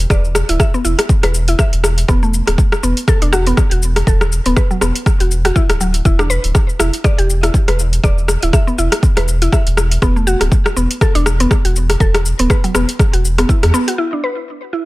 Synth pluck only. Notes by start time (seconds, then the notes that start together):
0.11 D5
0.49 E4
0.60 E5
0.74 B3
0.85 E4
1.24 B4
1.48 E4
1.59 E5
2.09 B3
2.23 A3
2.83 B3
3.08 A4
3.22 D4
3.33 F#4
3.47 B3
3.72 F#4
4.07 A4
4.46 B3
4.57 B4
4.71 F#3
4.81 B3
5.20 F#4
5.45 F#4
5.56 E4
5.81 F#3
6.05 E4
6.19 D4
6.30 B4
6.79 E4
7.04 D5
7.18 G4
7.43 E4
7.68 B4
8.04 D5
8.43 E4
8.53 E5
8.67 B3
8.78 E4
9.17 B4
9.42 E4
9.53 E5
10.02 B3
10.16 A3
10.27 F#4
10.77 B3
11.01 A4
11.15 D4
11.40 B3
11.65 F#4
12.01 A4
12.39 B3
12.50 B4
12.64 F#3
12.75 B3
13.13 F#4
13.38 B3
13.49 E4
13.74 B3
13.88 F#4
13.98 E4
14.13 D4
14.24 B4
14.73 E4